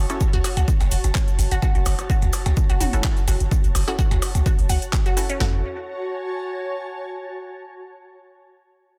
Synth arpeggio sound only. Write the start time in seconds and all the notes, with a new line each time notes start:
0.33 F#4
0.44 F#4
0.57 F#4
0.92 F#4
1.52 F#4
1.62 F#4
1.75 F#4
2.10 F#4
2.70 F#4
2.81 F#4
2.93 F#4
3.28 F#4
3.88 F#4
3.99 F#4
4.11 F#4
4.46 F#4
4.70 F#5
5.06 F#4
5.17 F#4
5.30 C#4
5.40 F#4